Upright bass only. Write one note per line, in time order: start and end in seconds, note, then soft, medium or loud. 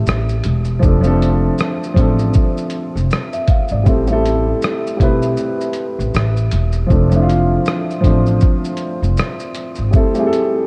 0.07 0.40 A1 medium
0.45 0.78 E1 medium
0.83 1.48 F1 loud
1.97 2.29 A1 medium
2.95 3.08 F1 medium
3.72 3.85 G#1 medium
3.87 4.52 A1 loud
5.00 5.33 B1 medium
5.99 6.12 A1 medium
6.15 6.47 A1 loud
6.53 6.85 E1 medium
6.90 7.55 F1 loud
8.04 8.37 A1 loud
9.03 9.16 F1 medium
9.79 9.92 G#1 medium